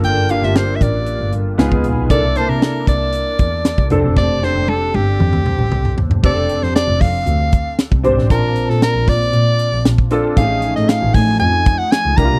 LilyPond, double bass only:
\new Staff \with { instrumentName = "Double bass" } { \clef bass \time 4/4 \key f \major \tempo 4 = 116 g,,8. g,,16 r8 a,,8 r16 g,,16 g,8 cis,16 dis,16 bes,,16 b,,16 | c,8 r16 c8 r16 c,8 r8 e,8 r16 c,16 f,,16 e,,16 | f,,8. f,,16 r8 g,,8 f,16 d,16 r16 a,,16 c,16 r16 ees,16 e,,16 | f,,8 r16 f,16 r16 f,,16 f,8 d,8 r8. c,16 aes,,16 a,,16 |
bes,,8 r16 bes,16 r16 bes,,16 bes,8 bes,8 r16 bes,,16 bes,,8 r8 | a,,8 r16 a,16 r16 a,,16 a,8 f,8 r8. cis,16 c,16 b,,16 | }